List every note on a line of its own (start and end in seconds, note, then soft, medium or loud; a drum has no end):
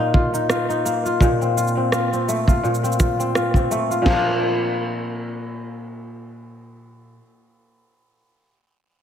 0.00 1.20 A#2 medium
0.00 0.85 A#3 medium
0.00 0.33 D#4 medium
0.00 0.13 F4 medium
0.14 0.49 F4 medium
0.14 kick medium
0.34 0.69 D#4 medium
0.34 shaker soft
0.50 1.05 F4 medium
0.50 cross-stick medium
0.50 shaker soft
0.69 2.31 D#4 medium
0.69 shaker soft
0.85 2.34 A#3 medium
0.85 shaker medium
1.06 1.57 F4 medium
1.06 shaker soft
1.21 2.62 A#2 medium
1.21 kick medium
1.21 shaker soft
1.41 1.77 C4 medium
1.41 shaker soft
1.57 1.92 F4 medium
1.57 shaker medium
1.67 shaker soft
1.77 2.12 C4 medium
1.92 2.47 F4 medium
1.92 cross-stick medium
1.92 shaker soft
2.13 2.83 C4 medium
2.13 shaker soft
2.28 3.71 A3 medium
2.28 shaker medium
2.48 2.99 F4 medium
2.48 kick medium
2.48 shaker soft
2.63 4.01 A#2 medium
2.63 shaker soft
2.74 shaker soft
2.83 3.19 C4 medium
2.83 shaker soft
2.92 shaker soft
2.99 3.35 F4 medium
2.99 kick medium
2.99 shaker medium
3.19 3.55 C4 medium
3.19 shaker soft
3.35 3.90 F4 medium
3.35 cross-stick medium
3.35 shaker soft
3.54 5.35 C4 medium
3.54 kick medium
3.54 shaker soft
3.71 4.16 A3 medium
3.71 shaker medium
3.91 4.16 F4 medium
3.91 shaker soft
4.02 7.18 A#2 medium
4.02 kick medium
4.02 snare medium
4.02 crash medium
4.06 7.22 F3 medium
4.06 7.26 A#3 medium
4.13 7.29 D4 medium
4.13 7.32 F4 medium